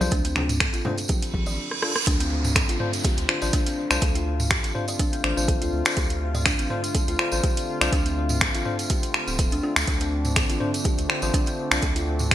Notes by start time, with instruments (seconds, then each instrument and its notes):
Already playing: analog synth pad D3 A3 C4 D4
0.01 analog synth bass C2, tine electric piano D4 F4 C5, kalimba D5, tambourine, high conga
0.11 analog synth bass D2, kalimba D4, kick, closed hi-hat, tambourine
0.25 kalimba C4, closed hi-hat, tambourine
0.36 finger snap, high conga, low conga
0.49 closed hi-hat, mid tom, tambourine
0.60 kalimba A4, finger snap, kick, closed hi-hat
0.73 analog synth bass A1, kalimba F4, closed hi-hat, tambourine
0.85 tine electric piano D4 F4 C5, mid tom, low conga
0.98 closed hi-hat, tambourine
1.08 kalimba G4, kick, closed hi-hat, tambourine, reverse cymbal, high conga
1.22 closed hi-hat, tambourine
1.34 analog synth bass A1, kick, high conga
1.46 analog synth bass A1, kalimba D5, tambourine
1.71 cross-stick
1.82 tine electric piano D4 F4 A4, cross-stick
1.96 cross-stick
2.07 analog synth bass D2, analog synth pad D3 A3 C4 F4, kalimba D4, kick, closed hi-hat, tambourine, downlifter
2.20 kalimba C4, closed hi-hat, tambourine
2.44 mid tom, tambourine
2.55 kalimba A4, finger snap, kick, closed hi-hat, tambourine
2.69 analog synth bass A1, kalimba F4, closed hi-hat, tambourine
2.80 tine electric piano D4 F4 C5, mid tom
2.93 closed hi-hat, tambourine
3.04 kalimba G4, kick, closed hi-hat, tambourine
3.17 analog synth bass D2, closed hi-hat, tambourine
3.29 tine electric piano D4 F4 C5, finger snap
3.42 analog synth bass A1, tine electric piano D4 F4 C5, kalimba D5, tambourine
3.53 kalimba D4, kick, closed hi-hat, tambourine
3.67 kalimba C4, closed hi-hat, tambourine
3.90 analog synth bass C2, tine electric piano D4 F4 C5, finger snap, tambourine
4.01 analog synth bass D2, kalimba A4, kick, closed hi-hat, tambourine
4.15 kalimba F4, closed hi-hat, tambourine
4.40 mid tom, tambourine
4.50 kalimba G4, finger snap, kick, closed hi-hat, tambourine
4.64 analog synth bass A1, closed hi-hat, tambourine
4.75 tine electric piano D4 F4 C5, mid tom
4.88 kalimba D5, closed hi-hat, tambourine
4.99 kalimba D4, kick, closed hi-hat, tambourine
5.13 kalimba C4, closed hi-hat, tambourine
5.24 analog synth bass A1, tine electric piano D4 F4 C5, finger snap
5.37 analog synth bass A1, tine electric piano D4 F4 C5, tambourine
5.48 kalimba A4, kick, closed hi-hat
5.62 analog synth bass D2, kalimba F4, closed hi-hat, tambourine
5.73 analog synth bass D2
5.85 tine electric piano D4 F4 C5, finger snap, tambourine
5.97 analog synth bass D2, kalimba G4, kick, closed hi-hat, tambourine
6.10 closed hi-hat, tambourine
6.35 kalimba D5, mid tom, tambourine
6.46 kalimba D4, finger snap, kick, closed hi-hat, tambourine
6.59 analog synth bass A1, kalimba C4, closed hi-hat, tambourine
6.70 tine electric piano D4 F4 C5, mid tom
6.84 closed hi-hat, tambourine
6.95 kalimba A4, kick, closed hi-hat, tambourine
7.08 analog synth bass D2, kalimba F4, closed hi-hat, tambourine
7.19 tine electric piano D4 F4 C5, finger snap
7.32 analog synth bass A1, tine electric piano D4 F4 C5, tambourine
7.44 kalimba G4, kick, closed hi-hat, tambourine
7.57 closed hi-hat, tambourine
7.81 analog synth bass C2, tine electric piano D4 F4 C5, kalimba D5, finger snap, tambourine
7.92 analog synth bass D2, kalimba D4, kick, closed hi-hat, tambourine
8.06 kalimba C4, closed hi-hat, tambourine
8.29 mid tom, tambourine
8.41 kalimba A4, finger snap, kick, closed hi-hat, tambourine
8.54 analog synth bass A1, kalimba F4, closed hi-hat, tambourine
8.65 tine electric piano D4 F4 C5, mid tom
8.79 closed hi-hat, tambourine
8.90 kalimba G4, kick, closed hi-hat, tambourine
9.03 closed hi-hat, tambourine
9.14 finger snap
9.27 analog synth bass D1, kalimba C4, tambourine
9.38 kalimba A4, kick, closed hi-hat, tambourine
9.51 analog synth bass D2, kalimba D4, closed hi-hat, tambourine
9.63 tine electric piano D4 F4 A4, kalimba D4
9.76 analog synth bass D2, finger snap, tambourine
9.87 analog synth bass D2, analog synth pad D4, kalimba D4, kick, closed hi-hat, tambourine
10.00 kalimba C4, closed hi-hat, tambourine
10.25 mid tom, tambourine
10.36 kalimba A4, finger snap, kick, closed hi-hat, tambourine
10.49 analog synth bass A1, kalimba F4, closed hi-hat, tambourine
10.60 tine electric piano D4 F4 C5, mid tom
10.74 closed hi-hat, tambourine
10.84 kalimba G4, kick, closed hi-hat, tambourine
10.98 analog synth bass D2, closed hi-hat, tambourine
11.09 tine electric piano D4 F4 C5, finger snap
11.22 analog synth bass A1, tine electric piano D4 F4 C5, kalimba D5, tambourine
11.34 kalimba D4, kick, closed hi-hat, tambourine
11.46 kalimba C4, closed hi-hat, tambourine
11.71 analog synth bass C2, tine electric piano D4 F4 C5, finger snap, tambourine
11.82 analog synth bass D2, kalimba A4, kick, closed hi-hat, tambourine
11.96 kalimba F4, closed hi-hat, tambourine
12.19 mid tom, tambourine
12.31 kalimba G4, finger snap, kick, closed hi-hat, tambourine